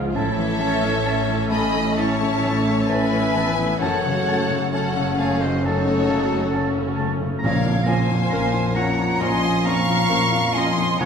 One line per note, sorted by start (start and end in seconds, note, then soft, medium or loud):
0.00 0.11 C#2 medium
0.00 0.17 G#2 medium
0.00 0.11 C#3 medium
0.00 0.18 C#3 medium
0.00 0.17 F3 medium
0.00 0.19 F3 medium
0.00 0.13 G#3 medium
0.00 0.15 G#3 medium
0.00 0.81 C#4 medium
0.00 0.13 F4 medium
0.00 0.17 G#4 medium
0.00 0.19 G#4 medium
0.00 2.43 C#5 medium
0.00 0.19 F5 medium
0.00 0.19 G#5 medium
0.12 3.76 A1 medium
0.12 1.92 A2 medium
0.12 3.84 A2 medium
0.12 3.76 A2 medium
0.12 3.76 A3 medium
0.12 1.04 A3 medium
0.12 0.30 C#4 medium
0.12 3.76 C#4 loud
0.12 0.60 E4 medium
0.12 1.48 A4 loud
0.12 1.52 C#5 medium
0.12 1.46 E5 loud
0.12 0.31 A5 medium
0.38 2.87 E3 medium
0.38 0.74 E3 medium
0.59 0.96 A3 medium
0.59 2.64 A3 medium
0.59 0.75 C#4 medium
0.59 1.04 C#4 medium
0.59 0.77 A5 medium
0.82 1.19 E3 medium
0.82 2.41 C#4 medium
1.05 1.95 A3 medium
1.05 1.94 C#4 medium
1.05 1.22 C#4 medium
1.05 1.42 C#5 medium
1.05 1.22 A5 medium
1.28 1.65 E3 soft
1.28 2.18 A4 medium
1.50 1.88 A3 medium
1.50 1.67 C#4 medium
1.50 1.97 D#5 loud
1.50 1.95 G#5 medium
1.50 1.66 A5 medium
1.50 1.96 B5 loud
1.75 2.11 E3 medium
1.95 3.77 A2 medium
1.95 2.86 C#4 medium
1.95 2.15 C#4 medium
1.95 2.87 E4 medium
1.95 2.86 E5 medium
1.95 2.88 A5 loud
1.95 2.13 A5 medium
1.99 2.90 C#5 medium
2.19 2.57 A3 medium
2.19 4.96 A4 medium
2.42 2.81 E3 medium
2.42 4.50 C#4 medium
2.42 2.59 C#4 medium
2.42 2.59 A5 medium
2.65 3.11 A3 medium
2.65 3.03 A3 medium
2.88 3.34 E3 medium
2.88 3.33 C#4 medium
2.88 3.05 C#4 medium
2.88 3.78 E4 medium
2.88 3.81 B4 loud
2.88 3.25 C#5 medium
2.88 3.80 E5 loud
2.88 3.80 G#5 loud
2.88 3.05 A5 medium
3.12 3.49 E3 soft
3.12 3.58 A3 medium
3.34 3.84 E3 medium
3.34 3.71 A3 medium
3.34 3.80 B3 medium
3.34 3.53 C#4 medium
3.34 3.50 A5 medium
3.58 3.81 E3 medium
3.58 4.27 A3 medium
3.78 7.39 F#1 medium
3.78 7.38 F#2 medium
3.78 7.47 F#2 medium
3.78 4.70 A3 medium
3.78 7.27 A3 medium
3.78 7.27 C#4 medium
3.78 3.97 C#4 medium
3.78 4.72 F#4 medium
3.78 4.71 A4 medium
3.78 4.71 C#5 medium
3.78 4.71 F#5 loud
3.78 3.98 A5 medium
3.82 5.60 F#2 medium
4.05 6.54 C#3 medium
4.05 4.41 C#3 medium
4.27 6.31 A3 medium
4.27 4.64 A3 medium
4.27 4.43 C#4 medium
4.27 4.44 A5 medium
4.51 4.87 C#3 medium
4.51 6.09 C#4 medium
4.72 5.61 A3 medium
4.72 4.88 C#4 medium
4.72 5.63 C#4 medium
4.72 5.17 A4 medium
4.72 5.17 C#5 medium
4.72 5.09 C#5 medium
4.72 5.17 F#5 loud
4.72 4.91 A5 medium
4.96 5.32 C#3 medium
4.96 5.86 A4 medium
5.17 5.55 A3 medium
5.17 5.33 C#4 medium
5.17 5.40 G#4 medium
5.17 5.42 C#5 medium
5.17 5.41 F5 loud
5.17 5.36 A5 medium
5.40 5.77 C#3 medium
5.40 5.61 F#4 medium
5.40 5.66 C5 medium
5.40 5.63 D#5 medium
5.61 7.39 F#2 medium
5.61 6.08 A3 medium
5.61 5.80 C#4 medium
5.61 6.53 D#4 medium
5.61 6.95 F#4 medium
5.61 6.99 A4 medium
5.61 6.97 C#5 loud
5.61 5.81 A5 medium
5.87 6.22 A3 soft
5.87 7.47 A4 medium
6.07 6.45 C#3 medium
6.07 6.53 F#3 medium
6.07 8.09 C#4 medium
6.07 6.26 C#4 medium
6.07 6.25 A5 medium
6.32 6.77 A3 medium
6.32 6.68 A3 soft
6.52 6.98 C#3 medium
6.52 7.42 A3 medium
6.52 7.41 C#4 medium
6.52 6.69 C#4 medium
6.52 6.69 A5 medium
6.57 6.91 C#5 medium
6.78 7.12 C#3 medium
6.78 7.21 A3 medium
6.96 7.47 C#3 medium
6.96 7.35 A3 medium
6.96 7.13 C#4 medium
6.96 7.12 A5 medium
7.21 7.43 C#3 medium
7.21 7.47 A3 medium
7.39 8.21 A#2 medium
7.39 7.50 F3 medium
7.39 7.50 C#4 medium
7.39 7.84 A#4 medium
7.39 7.55 A#5 medium
7.43 8.21 A#1 medium
7.43 9.17 A#1 medium
7.43 8.72 A#2 medium
7.43 11.04 A#2 medium
7.43 10.96 F3 medium
7.43 7.59 C#4 medium
7.43 10.96 C#4 loud
7.43 7.84 C#5 medium
7.43 7.85 F5 loud
7.66 8.01 F2 medium
7.66 10.08 A#3 soft
7.84 7.95 F3 medium
7.84 8.23 F3 medium
7.84 7.95 C#4 medium
7.84 8.03 C#4 medium
7.84 8.78 F5 loud
7.84 8.75 G#5 loud
7.84 8.00 A#5 medium
7.88 9.87 F3 medium
7.88 8.76 C5 medium
8.10 8.45 F2 medium
8.10 9.63 C#4 medium
8.30 9.10 A#1 medium
8.30 9.10 A#2 medium
8.30 8.38 F3 medium
8.30 8.38 C#4 medium
8.30 8.48 C#4 medium
8.30 11.04 A#4 medium
8.30 8.67 A#4 medium
8.30 8.46 A#5 medium
8.53 8.89 F2 medium
8.74 8.83 F3 medium
8.74 9.12 F3 medium
8.74 8.92 C#4 medium
8.74 8.84 C#4 medium
8.74 9.20 C#5 medium
8.74 9.19 C#5 medium
8.74 9.22 F#5 medium
8.74 8.90 A#5 medium
8.74 9.21 A#5 loud
8.99 9.34 F2 medium
8.99 11.04 A#5 medium
9.19 9.99 A#1 medium
9.19 10.96 A#1 medium
9.19 9.99 A#2 medium
9.19 9.28 F3 medium
9.19 9.35 C#4 medium
9.19 9.28 C#4 medium
9.19 11.05 C#5 medium
9.19 9.65 D#5 medium
9.19 9.67 G#5 medium
9.19 9.35 A#5 medium
9.19 9.64 C6 loud
9.45 9.79 F3 soft
9.64 10.02 F2 medium
9.64 9.73 F3 medium
9.64 11.05 C#4 medium
9.64 9.74 C#4 medium
9.64 9.82 C#4 medium
9.64 10.55 F5 loud
9.64 9.80 A#5 medium
9.64 10.55 A#5 loud
9.64 10.54 C#6 loud
9.88 10.31 F3 medium
9.88 10.24 F3 medium
10.08 10.89 A#1 medium
10.08 10.89 A#2 medium
10.08 10.19 F3 medium
10.08 10.53 A#3 medium
10.08 10.24 C#4 medium
10.08 10.18 C#4 medium
10.08 10.45 A#4 medium
10.08 10.25 A#5 medium
10.32 10.68 F2 medium
10.32 10.76 F3 medium
10.54 10.91 F3 medium
10.54 10.64 F3 medium
10.54 11.03 A#3 medium
10.54 10.71 C#4 medium
10.54 10.64 C#4 medium
10.54 11.00 D#5 medium
10.54 11.01 G#5 medium
10.54 10.72 A#5 medium
10.54 11.00 C6 loud
10.77 11.00 F2 medium
10.77 11.05 F3 medium
10.99 11.05 C#2 medium
10.99 11.05 C#3 medium
10.99 11.05 F3 medium
10.99 11.05 C#4 medium
10.99 11.05 C#5 loud
10.99 11.05 F#5 medium
10.99 11.05 G#5 medium
10.99 11.05 A#5 loud